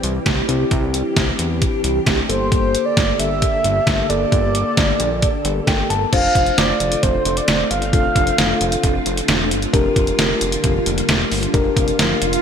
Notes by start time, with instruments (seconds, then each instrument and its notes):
Already playing: string machine E3 G3 C4 G4, tine electric piano C4 E4 G4
0.03 analog synth bass C2, closed hi-hat
0.26 analog synth bass C2, kick, snare, closed hi-hat
0.49 analog synth bass C2, tine electric piano C4 E4 G4, string machine D4, closed hi-hat
0.71 analog synth bass C2, kick, closed hi-hat
0.94 closed hi-hat
1.16 analog synth bass C2, kick, snare, closed hi-hat
1.39 analog synth bass E2, closed hi-hat
1.62 kick, closed hi-hat
1.84 analog synth bass C2, closed hi-hat
2.06 analog synth bass C2, kick, snare, closed hi-hat
2.29 analog synth bass G1, string machine D3 A#3 A4, tine electric piano A#3 G4 A4, soft synth lead C5, closed hi-hat
2.52 soft synth lead C5, kick, closed hi-hat
2.75 closed hi-hat
2.85 soft synth lead D5
2.97 analog synth bass G1, kick, snare, closed hi-hat
3.19 analog synth bass G1, soft synth lead E5, closed hi-hat
3.42 kick, closed hi-hat
3.64 analog synth bass G1, closed hi-hat
3.87 analog synth bass G1, kick, snare, closed hi-hat
4.09 analog synth bass G1, tine electric piano A#3 G4 A4, soft synth lead D5, closed hi-hat
4.32 analog synth bass G1, kick, closed hi-hat
4.55 closed hi-hat
4.77 analog synth bass G1, kick, snare, closed hi-hat
5.00 analog synth bass A#1, closed hi-hat
5.22 kick, closed hi-hat
5.45 analog synth bass G1, closed hi-hat
5.67 analog synth bass G1, tine electric piano G5, kick, snare, closed hi-hat
5.90 analog synth bass G1, tine electric piano A5, closed hi-hat
6.12 analog synth bass F1, string machine D3 A3 C4 F4, tine electric piano D4 F4 C5, soft synth lead F5, kick, closed hi-hat, crash
6.35 analog synth bass F1, kick, closed hi-hat
6.46 closed hi-hat
6.58 analog synth bass F1, soft synth lead D5, snare, closed hi-hat
6.80 analog synth bass F1, closed hi-hat
6.92 closed hi-hat
7.03 analog synth bass F1, soft synth lead C5, kick, closed hi-hat
7.25 analog synth bass F1, closed hi-hat
7.37 soft synth lead D5, closed hi-hat
7.48 analog synth bass E1, snare, closed hi-hat
7.71 analog synth bass G1, soft synth lead F5, closed hi-hat
7.82 closed hi-hat
7.93 analog synth bass F1, tine electric piano D4 F4 A4, kick, closed hi-hat
8.16 analog synth bass F1, kick, closed hi-hat
8.27 closed hi-hat
8.38 analog synth bass F1, snare, closed hi-hat
8.61 analog synth bass F1, closed hi-hat
8.72 closed hi-hat
8.83 analog synth bass F1, kick, closed hi-hat
9.06 analog synth bass F1, closed hi-hat
9.17 closed hi-hat
9.28 analog synth bass E1, snare, closed hi-hat
9.51 analog synth bass G1, closed hi-hat
9.62 closed hi-hat
9.73 analog synth bass F1, string machine G3 A#3, tine electric piano D4 G4 A#4, kick, closed hi-hat, swell
9.96 analog synth bass F1, kick, closed hi-hat
10.07 closed hi-hat
10.19 analog synth bass F1, snare, closed hi-hat
10.41 analog synth bass F1, closed hi-hat
10.52 closed hi-hat
10.64 analog synth bass F1, kick, closed hi-hat
10.86 analog synth bass F1, closed hi-hat
10.98 closed hi-hat
11.09 analog synth bass E1, snare, closed hi-hat
11.31 analog synth bass G1, open hi-hat
11.43 closed hi-hat
11.54 analog synth bass F1, tine electric piano D4 G4 A#4, kick, closed hi-hat
11.77 analog synth bass F1, kick, closed hi-hat
11.88 closed hi-hat
11.99 analog synth bass F1, snare, closed hi-hat
12.22 analog synth bass F1, closed hi-hat
12.33 closed hi-hat